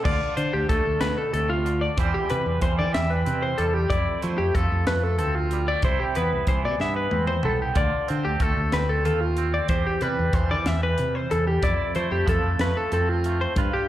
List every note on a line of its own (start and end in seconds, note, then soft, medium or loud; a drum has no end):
0.03 0.19 D2 medium
0.03 1.64 D3 medium
0.03 1.94 F4 medium
0.03 0.36 D5 medium
0.03 kick loud
0.03 crash loud
0.37 0.51 D3 medium
0.37 0.53 C5 medium
0.37 closed hi-hat medium
0.53 0.67 D2 medium
0.53 0.69 G4 medium
0.69 0.83 D2 medium
0.69 1.99 A3 medium
0.69 1.01 A4 medium
0.69 kick medium
0.69 closed hi-hat medium
0.86 0.99 D2 medium
1.01 1.15 D2 medium
1.01 1.32 B2 medium
1.01 1.17 B4 medium
1.01 snare loud
1.01 closed hi-hat medium
1.18 1.32 A4 medium
1.32 1.87 D2 medium
1.32 1.65 C3 medium
1.32 1.50 A4 medium
1.32 closed hi-hat medium
1.50 1.82 F4 medium
1.65 1.98 D3 medium
1.65 closed hi-hat medium
1.81 1.98 D5 medium
1.97 2.11 E2 loud
1.97 3.90 E2 medium
1.97 2.61 E3 medium
1.97 2.28 G3 medium
1.97 3.25 C4 medium
1.97 3.88 G4 medium
1.97 2.14 C5 medium
1.97 kick loud
1.97 closed hi-hat medium
2.14 2.30 G4 medium
2.29 2.44 C3 medium
2.29 2.91 G3 medium
2.29 2.62 B4 medium
2.29 closed hi-hat medium
2.46 2.59 E2 medium
2.61 2.81 E2 loud
2.61 3.94 E3 medium
2.61 2.78 C5 medium
2.61 kick medium
2.61 closed hi-hat medium
2.79 2.92 E3 medium
2.79 2.94 D5 medium
2.93 3.22 E2 medium
2.93 3.57 G3 medium
2.93 3.10 E5 medium
2.93 snare loud
2.93 closed hi-hat medium
3.10 3.42 B4 medium
3.26 3.54 C3 medium
3.26 5.19 C4 medium
3.26 closed hi-hat medium
3.43 3.59 C5 medium
3.58 3.85 E2 medium
3.58 3.91 G3 medium
3.58 3.74 A4 medium
3.58 closed hi-hat medium
3.74 3.90 G4 medium
3.90 4.04 F2 medium
3.90 5.80 F2 medium
3.90 5.84 E4 medium
3.90 4.22 D5 medium
3.90 kick loud
3.90 closed hi-hat medium
4.22 4.37 F3 medium
4.22 4.86 A3 medium
4.22 4.39 C5 medium
4.22 closed hi-hat medium
4.38 4.52 F2 medium
4.38 4.55 G4 medium
4.54 4.68 F2 medium
4.54 5.80 F3 medium
4.54 4.87 A4 medium
4.54 kick medium
4.54 closed hi-hat medium
4.72 4.85 F2 medium
4.87 5.21 F2 loud
4.87 5.51 A3 medium
4.87 5.04 B4 medium
4.87 snare loud
4.87 closed hi-hat medium
5.04 5.17 A4 medium
5.18 5.74 D2 medium
5.18 6.20 C4 medium
5.18 5.35 A4 medium
5.18 closed hi-hat medium
5.35 5.67 F4 medium
5.51 5.68 G3 medium
5.51 closed hi-hat medium
5.68 5.84 A3 soft
5.68 5.84 D5 medium
5.82 5.97 C2 loud
5.82 6.48 C3 medium
5.82 7.75 E4 medium
5.82 6.00 C5 medium
5.82 kick loud
5.82 closed hi-hat medium
6.00 6.16 G4 medium
6.15 6.30 E2 medium
6.15 6.80 B3 medium
6.15 6.48 B4 medium
6.15 closed hi-hat medium
6.33 6.46 C2 medium
6.47 6.66 C2 medium
6.47 7.73 E3 medium
6.47 6.64 C5 medium
6.47 kick medium
6.47 closed hi-hat medium
6.64 6.78 C3 medium
6.64 6.81 D5 medium
6.80 7.06 G2 medium
6.80 7.42 B3 medium
6.80 6.96 E5 medium
6.80 snare medium
6.96 7.27 B4 medium
7.11 7.39 E2 medium
7.11 7.78 C4 medium
7.11 high tom medium
7.27 7.44 C5 medium
7.27 mid tom medium
7.43 7.71 C2 medium
7.43 7.72 B3 medium
7.43 7.61 A4 medium
7.43 mid tom medium
7.62 7.77 G4 medium
7.75 7.89 D2 medium
7.75 9.69 D3 medium
7.75 9.04 F4 medium
7.75 8.09 D5 medium
7.75 kick loud
7.75 closed hi-hat medium
8.08 8.23 D3 medium
8.08 8.72 C4 medium
8.08 8.25 C5 medium
8.08 closed hi-hat medium
8.25 8.39 D2 medium
8.25 8.42 G4 medium
8.40 8.54 D2 medium
8.40 9.73 A3 medium
8.40 8.73 A4 medium
8.40 kick medium
8.40 closed hi-hat medium
8.57 8.70 D2 medium
8.72 9.06 D2 loud
8.72 9.37 C4 medium
8.72 8.89 B4 medium
8.72 snare loud
8.72 closed hi-hat medium
8.89 9.04 A4 medium
9.05 9.59 D#2 medium
9.05 9.65 F4 medium
9.05 9.21 A4 medium
9.05 closed hi-hat medium
9.21 9.53 F4 medium
9.37 12.88 C4 medium
9.37 closed hi-hat medium
9.54 9.69 D5 medium
9.68 11.29 E2 medium
9.68 9.83 E2 medium
9.68 11.59 G4 medium
9.68 9.85 C5 medium
9.68 kick loud
9.68 closed hi-hat medium
9.87 10.02 G4 medium
10.01 10.15 C3 medium
10.01 11.63 G3 medium
10.01 10.34 B4 medium
10.01 closed hi-hat medium
10.19 10.32 E2 medium
10.33 10.53 E2 loud
10.33 11.59 E3 medium
10.33 10.50 C5 medium
10.33 kick medium
10.33 closed hi-hat medium
10.51 10.64 E3 medium
10.51 10.67 D5 medium
10.66 10.93 E2 medium
10.66 10.82 E5 medium
10.66 snare loud
10.66 closed hi-hat medium
10.83 11.15 B4 medium
10.98 11.26 C3 medium
10.98 closed hi-hat medium
11.15 11.31 C5 medium
11.30 11.62 E2 medium
11.30 11.58 E2 medium
11.30 11.47 A4 medium
11.30 closed hi-hat medium
11.47 11.63 G4 medium
11.62 13.52 F2 medium
11.62 11.76 F2 medium
11.62 13.56 E4 medium
11.62 11.95 D5 medium
11.62 kick loud
11.62 closed hi-hat medium
11.95 12.09 F3 medium
11.95 12.59 A3 medium
11.95 12.11 C5 medium
11.95 closed hi-hat medium
12.11 12.24 F2 medium
12.11 12.27 G4 medium
12.26 12.41 F2 medium
12.26 13.51 F3 medium
12.26 12.60 A4 medium
12.26 kick medium
12.26 closed hi-hat medium
12.43 12.57 F2 medium
12.59 12.73 F2 medium
12.59 13.24 A3 medium
12.59 12.76 B4 medium
12.59 snare loud
12.59 closed hi-hat medium
12.77 12.92 A4 medium
12.92 13.45 F2 medium
12.92 13.53 C4 medium
12.92 13.09 A4 medium
12.92 closed hi-hat medium
13.09 13.40 F4 medium
13.24 13.53 A3 medium
13.24 closed hi-hat medium
13.41 13.58 C5 medium
13.56 13.69 G2 loud
13.56 13.88 G2 medium
13.56 13.88 F4 medium
13.56 13.73 B4 medium
13.56 kick loud
13.56 closed hi-hat medium
13.74 13.88 G4 medium